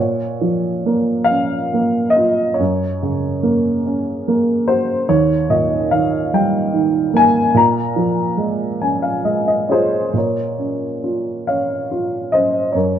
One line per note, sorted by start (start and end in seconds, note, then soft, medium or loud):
0.00 2.56 A#2 soft
0.00 1.32 C#5 soft
0.41 2.13 F3 soft
0.86 1.72 A#3 soft
1.24 2.16 F5 medium
1.30 2.56 C#4 soft
1.74 2.58 A#3 soft
2.10 2.58 D#5 medium
2.16 2.59 F4 soft
2.54 3.79 C#5 medium
2.59 5.04 F#2 soft
3.03 4.64 C#3 soft
3.43 4.26 A#3 soft
3.86 5.05 C#4 soft
4.28 5.06 A#3 soft
4.68 5.07 F#4 soft
4.68 5.09 C5 medium
5.09 7.50 D#2 soft
5.09 5.50 C#5 medium
5.50 7.09 A#2 soft
5.50 5.92 D#5 medium
5.91 6.72 D#3 soft
5.91 6.29 F5 medium
6.33 7.51 G3 soft
6.33 7.16 G5 medium
6.74 7.52 D#3 soft
7.14 7.53 A#3 soft
7.14 7.57 G#5 medium
7.54 10.11 A#2 soft
7.54 9.23 A#5 medium
7.96 9.66 F3 soft
8.37 9.24 G#3 soft
8.81 10.11 C#4 soft
8.81 9.02 G#5 soft
9.02 9.23 F5 soft
9.25 10.12 G#3 soft
9.25 9.46 D#5 soft
9.48 9.69 D#5 soft
9.69 10.13 F4 soft
9.69 10.12 G#4 soft
9.69 10.17 C5 medium
9.69 10.11 C#5 soft
10.13 12.70 A#2 soft
10.13 11.45 A#4 soft
10.18 11.47 C#5 soft
10.58 11.48 C#4 soft
11.04 11.90 F4 soft
11.47 12.33 C#4 soft
11.47 12.29 C#5 soft
11.47 12.35 F5 soft
11.91 12.73 F4 soft
12.32 12.75 C#4 soft
12.32 12.72 C5 soft
12.32 12.76 D#5 medium
12.72 12.99 F#2 soft
12.72 12.99 A#4 soft
12.72 12.99 C#5 soft